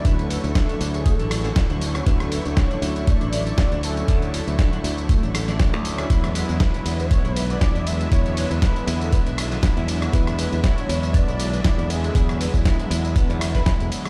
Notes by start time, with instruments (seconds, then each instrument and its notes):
Already playing: string section D3 C#6
0.04 fingered electric bass D2, analog synth pad D3 F#3 A3 E4, clean electric guitar D4, analog synth lead B4, kick, closed hi-hat, tambourine
0.19 closed hi-hat, tambourine
0.30 clean electric guitar A4, open hi-hat, tambourine
0.44 fingered electric bass D2, analog synth lead A4, closed hi-hat, tambourine
0.55 clean electric guitar D4, kick, snare, closed hi-hat, tambourine
0.69 clean electric guitar D4, closed hi-hat, tambourine
0.80 fingered electric bass D2, clean electric guitar D4, open hi-hat, tambourine
0.94 analog synth lead G#4, closed hi-hat, tambourine
1.06 clean electric guitar A3, analog synth lead A4, kick, closed hi-hat, tambourine
1.19 fingered electric bass A1, clean electric guitar D4, closed hi-hat, tambourine
1.31 clean electric guitar D5, cross-stick, open hi-hat, tambourine
1.41 analog synth lead G#4, clean electric guitar A4, snare, closed hi-hat, tambourine
1.56 clean electric guitar D4, kick, snare, closed hi-hat, tambourine
1.70 fingered electric bass D2, clean electric guitar D4, closed hi-hat, tambourine
1.81 analog synth pad D3 F#3 A3 C#4 E4, open hi-hat, tambourine
1.95 cross-stick, closed hi-hat, tambourine
2.06 fingered electric bass D2, analog synth pad D3 F#3 A3 E4, clean electric guitar D4, analog synth lead B4, kick, closed hi-hat, tambourine
2.20 cross-stick, closed hi-hat, tambourine
2.32 clean electric guitar A4, open hi-hat, tambourine
2.46 fingered electric bass D2, closed hi-hat, tambourine
2.57 clean electric guitar D4, analog synth lead C#5, kick, snare, closed hi-hat, tambourine
2.70 clean electric guitar D4, closed hi-hat, tambourine
2.82 fingered electric bass D2, clean electric guitar D4, open hi-hat, tambourine
2.96 closed hi-hat, tambourine
3.07 clean electric guitar A3, analog synth lead D5, kick, closed hi-hat, tambourine
3.21 fingered electric bass A1, clean electric guitar D4, closed hi-hat, tambourine
3.33 clean electric guitar D5, open hi-hat, tambourine
3.47 clean electric guitar A4, closed hi-hat, tambourine
3.58 clean electric guitar D4, kick, snare, closed hi-hat, tambourine
3.72 fingered electric bass D2, clean electric guitar D4, closed hi-hat, tambourine
3.82 analog synth pad D3 F#3 A3 C#4 E4, analog synth lead A4, open hi-hat, tambourine
3.97 closed hi-hat, tambourine
4.07 fingered electric bass D2, analog synth pad D3 F#3 A3 E4, clean electric guitar D4, kick, closed hi-hat, tambourine
4.22 closed hi-hat, tambourine
4.34 clean electric guitar A4, open hi-hat, tambourine
4.47 fingered electric bass D2, closed hi-hat, tambourine
4.59 clean electric guitar D4, kick, snare, closed hi-hat, tambourine
4.73 clean electric guitar D4, closed hi-hat, tambourine
4.84 fingered electric bass D2, clean electric guitar D4, open hi-hat, tambourine
4.98 closed hi-hat, tambourine
5.09 clean electric guitar A3, kick, closed hi-hat, tambourine
5.23 fingered electric bass A1, clean electric guitar D4, closed hi-hat, tambourine
5.34 clean electric guitar A4, cross-stick, open hi-hat, tambourine
5.48 clean electric guitar D5, snare, closed hi-hat, tambourine
5.59 clean electric guitar D4, kick, snare, closed hi-hat, tambourine
5.73 fingered electric bass D2, clean electric guitar A3, closed hi-hat, tambourine
5.84 analog synth pad D3 F#3 A3 C#4 E4, open hi-hat, tambourine
5.98 clean electric guitar D4, cross-stick, closed hi-hat, tambourine
6.09 fingered electric bass E2, analog synth pad D3 F#3 G#3 B3 E4, string section D4 E5, clean electric guitar E4, kick, closed hi-hat, ride, tambourine
6.24 cross-stick, closed hi-hat, tambourine
6.35 clean electric guitar B4, open hi-hat, ride, tambourine
6.49 fingered electric bass E2, closed hi-hat, tambourine
6.60 clean electric guitar E4, analog synth lead B4, kick, snare, closed hi-hat, ride, tambourine
6.74 clean electric guitar E4, closed hi-hat, tambourine
6.85 fingered electric bass E2, clean electric guitar E4, open hi-hat, ride, tambourine
7.00 analog synth lead C#5, closed hi-hat, tambourine
7.11 clean electric guitar B3, kick, closed hi-hat, ride, tambourine
7.24 fingered electric bass B1, clean electric guitar E4, closed hi-hat, tambourine
7.36 analog synth lead B4, clean electric guitar E5, open hi-hat, ride, tambourine
7.50 clean electric guitar B4, analog synth lead D5, closed hi-hat, tambourine
7.61 clean electric guitar E4, kick, snare, closed hi-hat, ride, tambourine
7.75 fingered electric bass E2, clean electric guitar E4, closed hi-hat, tambourine
7.86 analog synth pad D3 F#3 G#3 B3 E4, analog synth lead E5, open hi-hat, ride, tambourine
8.01 closed hi-hat, tambourine
8.11 fingered electric bass E2, analog synth pad D3 F#3 G#3 B3 E4, clean electric guitar E4, analog synth lead C#5, kick, closed hi-hat, ride, tambourine
8.26 closed hi-hat, tambourine
8.37 clean electric guitar B4, open hi-hat, ride, tambourine
8.51 fingered electric bass E2, analog synth lead B4, closed hi-hat, tambourine
8.62 clean electric guitar E4, kick, snare, closed hi-hat, ride, tambourine
8.76 clean electric guitar E4, closed hi-hat, tambourine
8.87 fingered electric bass E2, clean electric guitar E4, open hi-hat, ride, tambourine
9.01 analog synth lead A4, closed hi-hat, tambourine
9.13 clean electric guitar B3, analog synth lead B4, kick, closed hi-hat, ride, tambourine
9.26 fingered electric bass B1, clean electric guitar E4, closed hi-hat, tambourine
9.38 clean electric guitar E5, cross-stick, open hi-hat, ride, tambourine
9.51 clean electric guitar B4, snare, closed hi-hat, tambourine
9.63 clean electric guitar E4, kick, snare, closed hi-hat, ride, tambourine
9.77 fingered electric bass E2, clean electric guitar E4, closed hi-hat, tambourine
9.88 analog synth pad D3 F#3 G#3 B3 E4, open hi-hat, ride, tambourine
10.02 cross-stick, closed hi-hat, tambourine
10.12 fingered electric bass E2, analog synth pad D3 F#3 G#3 B3 E4, clean electric guitar E4, analog synth lead B4, kick, closed hi-hat, ride, tambourine
10.27 cross-stick, closed hi-hat, tambourine
10.39 clean electric guitar B4, open hi-hat, ride, tambourine
10.52 fingered electric bass E2, closed hi-hat, tambourine
10.64 clean electric guitar E4, analog synth lead C#5, kick, snare, closed hi-hat, ride, tambourine
10.78 clean electric guitar E4, closed hi-hat, tambourine
10.89 fingered electric bass E2, clean electric guitar E4, open hi-hat, ride, tambourine
11.03 closed hi-hat, tambourine
11.14 clean electric guitar B3, analog synth lead D5, kick, closed hi-hat, ride, tambourine
11.28 fingered electric bass B1, clean electric guitar E4, closed hi-hat, tambourine
11.39 clean electric guitar E5, open hi-hat, ride, tambourine
11.53 clean electric guitar B4, closed hi-hat, tambourine
11.64 clean electric guitar E4, kick, snare, closed hi-hat, ride, tambourine
11.78 fingered electric bass E2, clean electric guitar E4, closed hi-hat, tambourine
11.90 analog synth pad D3 F#3 G#3 B3 E4, analog synth lead G#4, open hi-hat, ride, tambourine
12.04 closed hi-hat, tambourine
12.14 fingered electric bass E2, analog synth pad D3 F#3 G#3 B3 E4, clean electric guitar E4, kick, closed hi-hat, ride, tambourine
12.29 cross-stick, closed hi-hat, tambourine
12.40 clean electric guitar B4, open hi-hat, ride, tambourine
12.54 fingered electric bass E2, kick, closed hi-hat, tambourine
12.65 clean electric guitar E4, kick, snare, closed hi-hat, ride, tambourine
12.79 clean electric guitar E4, closed hi-hat, tambourine
12.90 fingered electric bass E2, clean electric guitar E4, open hi-hat, ride, tambourine
13.05 closed hi-hat, tambourine
13.16 clean electric guitar B3, kick, closed hi-hat, ride, tambourine
13.29 fingered electric bass E2, clean electric guitar E4, closed hi-hat, tambourine
13.41 clean electric guitar E5, cross-stick, open hi-hat, ride, tambourine
13.55 clean electric guitar B4, kick, snare, closed hi-hat, tambourine
13.66 clean electric guitar E4, kick, snare, closed hi-hat, ride, tambourine
13.80 fingered electric bass E1, clean electric guitar E4, closed hi-hat, tambourine
13.91 analog synth pad D3 F#3 G#3 B3 E4, open hi-hat, ride, tambourine
14.05 cross-stick, closed hi-hat, tambourine